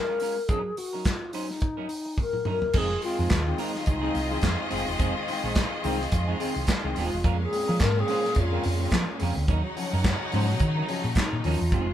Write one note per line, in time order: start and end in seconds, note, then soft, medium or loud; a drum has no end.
0.00 0.50 A#4 loud
0.09 0.20 G#3 soft
0.09 0.20 C#4 medium
0.09 0.19 F4 medium
0.09 0.19 A#4 medium
0.20 0.38 G#3 medium
0.20 0.38 C#4 medium
0.20 0.38 F4 medium
0.20 0.37 A#4 medium
0.20 open hi-hat medium
0.38 muted clean electric guitar stroke soft
0.48 0.70 F#3 medium
0.48 0.64 C#4 medium
0.48 0.63 D#4 medium
0.48 0.79 G#4 loud
0.48 0.63 A#4 medium
0.48 kick loud
0.48 closed hi-hat medium
0.64 muted clean electric guitar stroke soft
0.77 1.08 F#4 medium
0.77 muted clean electric guitar stroke soft
0.77 open hi-hat medium
0.93 1.05 F#3 medium
0.93 1.04 C#4 medium
0.93 1.04 D#4 medium
0.93 1.04 A#4 medium
1.05 1.35 F4 medium
1.05 kick loud
1.05 snare loud
1.05 clap medium
1.05 closed hi-hat medium
1.22 muted clean electric guitar stroke soft
1.33 1.50 F#3 medium
1.33 1.50 C#4 medium
1.33 2.18 D#4 medium
1.33 1.49 D#4 medium
1.33 1.50 C5 medium
1.33 open hi-hat medium
1.50 muted clean electric guitar stroke soft
1.50 snare soft
1.61 muted clean electric guitar stroke soft
1.61 kick loud
1.61 closed hi-hat medium
1.77 1.88 F#3 medium
1.77 1.89 C#4 medium
1.77 1.89 D#4 medium
1.77 1.89 A#4 medium
1.89 muted clean electric guitar stroke soft
1.89 open hi-hat medium
2.05 muted clean electric guitar stroke soft
2.18 muted clean electric guitar stroke soft
2.18 kick loud
2.18 high tom medium
2.22 2.46 A#4 loud
2.33 muted clean electric guitar stroke soft
2.33 mid tom medium
2.45 2.63 F#3 medium
2.45 2.62 C#4 medium
2.45 2.61 D#4 medium
2.45 2.61 A#4 medium
2.45 mid tom medium
2.50 2.79 A#4 loud
2.62 muted clean electric guitar stroke soft
2.62 floor tom medium
2.73 2.95 F1 loud
2.73 7.20 D#3 medium
2.73 2.91 G#3 medium
2.73 7.20 G#3 medium
2.73 2.91 C4 medium
2.73 7.20 C4 medium
2.73 2.90 D#4 medium
2.73 7.20 F4 medium
2.73 7.20 G#4 loud
2.73 2.89 G#4 medium
2.73 7.21 D#5 loud
2.73 kick loud
2.73 crash loud
2.78 3.04 G#4 loud
2.90 muted clean electric guitar stroke soft
3.02 3.17 G#3 medium
3.02 3.18 C4 medium
3.02 3.63 F4 loud
3.02 muted clean electric guitar stroke soft
3.02 open hi-hat medium
3.18 3.28 F2 medium
3.18 3.29 G#3 medium
3.18 3.29 C4 medium
3.18 3.29 D#4 medium
3.18 3.29 G#4 medium
3.30 3.52 D#2 medium
3.30 kick loud
3.30 snare loud
3.30 clap medium
3.30 closed hi-hat medium
3.46 3.58 D#3 medium
3.46 3.58 G#3 medium
3.46 3.58 C4 medium
3.46 muted clean electric guitar stroke soft
3.58 3.75 G#3 medium
3.58 3.74 C4 loud
3.58 3.73 D#4 loud
3.58 3.88 D#4 medium
3.58 3.74 A#4 medium
3.58 open hi-hat medium
3.74 muted clean electric guitar stroke soft
3.74 snare soft
3.86 4.08 C2 loud
3.86 4.40 D#4 medium
3.86 muted clean electric guitar stroke soft
3.86 kick loud
3.86 closed hi-hat medium
4.01 4.14 D#3 medium
4.01 4.14 G#3 medium
4.01 4.13 G#3 medium
4.01 4.13 C4 medium
4.01 4.15 C4 medium
4.01 4.14 D#4 medium
4.01 4.14 G#4 medium
4.14 4.36 C2 loud
4.14 muted clean electric guitar stroke soft
4.14 open hi-hat medium
4.29 4.42 D#3 medium
4.29 4.43 G#3 medium
4.29 4.42 C4 medium
4.29 muted clean electric guitar stroke soft
4.42 4.55 F2 loud
4.42 muted clean electric guitar stroke soft
4.42 kick loud
4.42 snare loud
4.42 clap loud
4.42 closed hi-hat medium
4.58 muted clean electric guitar stroke soft
4.70 4.83 F1 medium
4.70 4.86 D#3 medium
4.70 4.87 G#3 medium
4.70 4.86 G#3 medium
4.70 4.86 C4 medium
4.70 4.85 C4 medium
4.70 4.85 D#4 medium
4.70 4.85 G#4 medium
4.70 open hi-hat medium
4.86 4.97 E1 medium
4.86 4.92 G#3 soft
4.86 4.92 C4 soft
4.86 muted clean electric guitar stroke soft
4.99 5.11 F1 loud
4.99 5.16 G#3 medium
4.99 5.15 C4 medium
4.99 5.15 D#4 medium
4.99 5.15 G#4 medium
4.99 kick loud
4.99 closed hi-hat medium
5.16 5.20 G#3 soft
5.16 5.21 C4 soft
5.16 muted clean electric guitar stroke soft
5.28 5.42 D#3 medium
5.28 5.43 G#3 medium
5.28 5.43 C4 medium
5.28 muted clean electric guitar stroke soft
5.28 open hi-hat medium
5.44 5.64 A#1 medium
5.44 5.55 G#3 medium
5.44 5.55 C4 medium
5.44 5.54 D#4 medium
5.44 5.54 G#4 medium
5.55 kick loud
5.55 snare loud
5.55 clap loud
5.55 closed hi-hat medium
5.73 muted clean electric guitar stroke medium
5.83 6.05 C2 loud
5.83 5.98 D#3 loud
5.83 5.98 G#3 medium
5.83 6.01 G#3 medium
5.83 5.98 C4 loud
5.83 6.00 C4 medium
5.83 5.99 D#4 loud
5.83 5.99 A#4 loud
5.83 open hi-hat medium
6.00 muted clean electric guitar stroke soft
6.00 snare soft
6.12 6.33 F2 loud
6.12 muted clean electric guitar stroke soft
6.12 kick loud
6.12 closed hi-hat medium
6.28 6.38 G#3 medium
6.28 6.39 C4 medium
6.28 6.39 D#4 medium
6.28 6.40 G#4 medium
6.39 6.54 D#3 medium
6.39 6.53 G#3 medium
6.39 6.54 G#3 medium
6.39 6.53 C4 medium
6.39 6.55 C4 medium
6.39 6.54 D#4 medium
6.39 6.54 G#4 medium
6.39 open hi-hat medium
6.56 6.65 C2 medium
6.56 6.61 G#3 soft
6.56 6.61 C4 soft
6.56 muted clean electric guitar stroke medium
6.67 muted clean electric guitar stroke soft
6.67 kick loud
6.67 snare loud
6.67 clap loud
6.67 closed hi-hat medium
6.84 6.93 C2 loud
6.84 6.95 D#3 medium
6.84 6.94 G#3 medium
6.84 6.95 C4 medium
6.84 muted clean electric guitar stroke medium
6.95 7.08 D#1 medium
6.95 7.02 G#3 soft
6.95 7.17 G#3 loud
6.95 7.02 C4 soft
6.95 7.12 C4 medium
6.95 7.12 D#4 medium
6.95 7.38 F4 loud
6.95 7.11 G#4 loud
6.95 open hi-hat medium
7.12 7.21 E1 medium
7.12 muted clean electric guitar stroke medium
7.24 7.45 F2 loud
7.24 7.38 A#2 medium
7.24 9.47 A#2 medium
7.24 7.41 G#3 medium
7.24 9.47 G#3 medium
7.24 7.39 C#4 medium
7.24 9.44 C#4 loud
7.24 9.46 C#4 medium
7.24 7.39 F4 loud
7.24 9.44 A#4 loud
7.24 7.38 A#4 loud
7.24 9.44 F5 loud
7.24 kick loud
7.24 closed hi-hat medium
7.40 7.83 G#4 loud
7.40 muted clean electric guitar stroke soft
7.52 7.66 G#3 medium
7.52 7.66 C4 medium
7.52 muted clean electric guitar stroke medium
7.52 open hi-hat medium
7.68 7.77 F3 medium
7.68 7.79 G#3 medium
7.68 7.79 C#4 medium
7.68 7.79 F4 medium
7.68 7.78 A#4 medium
7.79 8.01 G#2 loud
7.79 8.01 A#4 loud
7.79 kick loud
7.79 snare loud
7.79 clap loud
7.79 closed hi-hat medium
7.96 8.07 C#3 medium
7.96 8.08 G#3 medium
7.96 8.08 C4 medium
7.96 8.42 G#4 loud
7.96 muted clean electric guitar stroke medium
8.08 8.25 G#3 loud
8.08 8.25 C#4 loud
8.08 8.25 F4 loud
8.08 8.25 C5 loud
8.08 open hi-hat medium
8.24 8.35 A#2 medium
8.24 muted clean electric guitar stroke soft
8.24 snare soft
8.35 8.57 F2 loud
8.35 muted clean electric guitar stroke soft
8.35 kick loud
8.35 closed hi-hat medium
8.41 9.22 F4 loud
8.52 8.63 C#3 medium
8.52 8.63 G#3 medium
8.52 8.65 G#3 medium
8.52 8.63 C4 medium
8.52 8.65 C#4 medium
8.52 8.65 F4 medium
8.52 8.66 A#4 medium
8.63 8.85 F2 loud
8.63 8.78 A#2 medium
8.63 muted clean electric guitar stroke soft
8.63 open hi-hat medium
8.80 8.91 C#3 medium
8.80 8.91 G#3 medium
8.80 8.92 C4 medium
8.80 muted clean electric guitar stroke medium
8.91 9.07 A#2 medium
8.91 9.04 F3 loud
8.91 muted clean electric guitar stroke soft
8.91 kick loud
8.91 snare loud
8.91 clap medium
8.91 closed hi-hat medium
9.08 muted clean electric guitar stroke medium
9.20 9.32 F2 loud
9.20 9.34 C#3 medium
9.20 9.34 G#3 medium
9.20 9.37 G#3 medium
9.20 9.35 C4 medium
9.20 9.37 C#4 medium
9.20 9.36 F4 medium
9.20 9.35 A#4 medium
9.20 open hi-hat medium
9.36 9.45 D2 medium
9.36 9.41 G#3 soft
9.36 9.41 C4 soft
9.36 muted clean electric guitar stroke soft
9.48 9.60 D#2 loud
9.48 11.70 C#3 medium
9.48 9.62 D#3 medium
9.48 9.65 F#3 medium
9.48 11.70 F#3 medium
9.48 9.64 C#4 medium
9.48 11.68 D#4 loud
9.48 11.70 D#4 loud
9.48 9.64 D#4 medium
9.48 9.63 A#4 medium
9.48 11.68 C#5 loud
9.48 11.68 F#5 loud
9.48 kick loud
9.48 closed hi-hat medium
9.64 9.69 F#3 soft
9.64 9.69 C#4 soft
9.64 muted clean electric guitar stroke medium
9.76 9.91 F3 medium
9.76 9.91 F#3 medium
9.76 9.91 C#4 medium
9.76 muted clean electric guitar stroke soft
9.76 open hi-hat medium
9.93 10.13 F#2 medium
9.93 10.04 F#3 medium
9.93 10.03 C#4 medium
9.93 10.03 D#4 medium
9.93 10.03 A#4 medium
10.04 kick loud
10.04 snare loud
10.04 clap loud
10.04 closed hi-hat medium
10.21 muted clean electric guitar stroke soft
10.32 10.61 G#2 loud
10.32 10.46 F3 medium
10.32 10.46 F#3 medium
10.32 10.49 F#3 medium
10.32 10.47 C#4 loud
10.32 10.49 C#4 loud
10.32 10.48 D#4 loud
10.32 10.48 C5 loud
10.32 open hi-hat medium
10.49 muted clean electric guitar stroke soft
10.49 snare soft
10.59 10.75 D#3 medium
10.59 10.81 D#3 loud
10.59 muted clean electric guitar stroke soft
10.59 kick loud
10.59 closed hi-hat medium
10.77 10.88 F#3 medium
10.77 10.88 C#4 medium
10.77 10.89 D#4 medium
10.77 10.89 A#4 medium
10.88 11.03 F3 medium
10.88 11.03 F#3 medium
10.88 11.03 C#4 loud
10.88 muted clean electric guitar stroke soft
10.88 open hi-hat medium
11.04 11.13 A#2 medium
11.04 11.09 F#3 soft
11.04 11.09 C#4 soft
11.04 muted clean electric guitar stroke medium
11.15 11.23 F#3 soft
11.15 11.22 C#4 soft
11.15 11.46 D#4 medium
11.15 muted clean electric guitar stroke soft
11.15 kick loud
11.15 snare loud
11.15 clap medium
11.15 closed hi-hat medium
11.32 11.41 A#2 medium
11.32 11.43 D#3 medium
11.32 muted clean electric guitar stroke soft
11.44 11.56 D#2 medium
11.44 11.59 F3 medium
11.44 11.58 F#3 medium
11.44 11.61 F#3 medium
11.44 11.59 C#4 medium
11.44 11.62 C#4 medium
11.44 11.61 D#4 medium
11.44 11.94 F4 medium
11.44 11.61 A#4 medium
11.44 open hi-hat medium
11.61 11.69 E2 medium
11.61 muted clean electric guitar stroke soft
11.72 11.93 F1 loud
11.72 11.94 D#3 medium
11.72 11.93 G#3 medium
11.72 11.94 G#3 medium
11.72 11.89 C4 medium
11.72 11.88 D#4 medium
11.72 11.94 F4 medium
11.72 11.88 G#4 medium
11.72 kick loud
11.72 closed hi-hat medium
11.89 muted clean electric guitar stroke medium